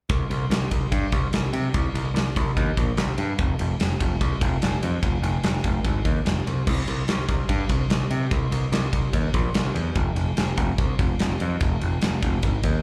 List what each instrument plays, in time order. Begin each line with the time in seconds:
0.09 picked electric bass C2, kick, ride
0.30 picked electric bass C2, ride
0.50 picked electric bass C2, snare, ride
0.71 picked electric bass C2, kick, ride
0.92 picked electric bass G2, kick, ride
1.12 picked electric bass C2, kick, ride
1.33 picked electric bass C2, snare, ride
1.53 picked electric bass C3, ride
1.74 picked electric bass C2, kick, ride
1.94 picked electric bass C2, ride
2.14 picked electric bass C2, snare, ride
2.36 picked electric bass C2, kick, ride
2.57 picked electric bass D#2, kick, ride
2.77 picked electric bass A#1, kick, ride
2.97 picked electric bass C2, snare, ride
3.18 picked electric bass G2, ride
3.39 picked electric bass F1, kick, ride
3.59 picked electric bass F1, ride
3.80 picked electric bass F1, snare, ride
4.00 picked electric bass F1, kick, ride
4.21 picked electric bass C2, kick, ride
4.41 picked electric bass F1, kick, ride
4.62 picked electric bass F1, snare, ride
4.83 picked electric bass F2, ride
5.03 picked electric bass F1, kick, ride
5.22 picked electric bass F1, ride
5.43 picked electric bass F1, snare, ride
5.64 picked electric bass F1, kick, ride
5.85 picked electric bass G#1, kick, ride
6.05 picked electric bass D#2, kick, ride
6.25 picked electric bass F1, snare, ride
6.47 picked electric bass C2, ride
6.67 picked electric bass C2, kick, crash
6.88 picked electric bass C2, ride
7.08 picked electric bass C2, snare, ride
7.29 picked electric bass C2, kick, ride
7.49 picked electric bass G2, kick, ride
7.69 picked electric bass C2, kick, ride
7.90 picked electric bass C2, snare, ride
8.11 picked electric bass C3, ride
8.31 picked electric bass C2, kick, ride
8.51 picked electric bass C2, ride
8.72 picked electric bass C2, snare, ride
8.93 picked electric bass C2, kick, ride
9.13 picked electric bass D#2, kick, ride
9.34 picked electric bass A#1, kick, ride
9.54 picked electric bass C2, snare, ride
9.74 picked electric bass E2, ride
9.95 picked electric bass F1, kick, ride
10.15 picked electric bass F1, ride
10.37 picked electric bass F1, snare, ride
10.57 picked electric bass F1, kick, ride
10.78 picked electric bass C2, kick, ride
10.99 picked electric bass F1, kick, ride
11.19 picked electric bass F1, snare, ride
11.40 picked electric bass F2, ride
11.61 picked electric bass F1, kick, ride
11.81 picked electric bass F1, ride
12.01 picked electric bass F1, snare, ride
12.22 picked electric bass F1, kick, ride
12.43 picked electric bass G#1, kick, ride
12.63 picked electric bass D#2, kick, ride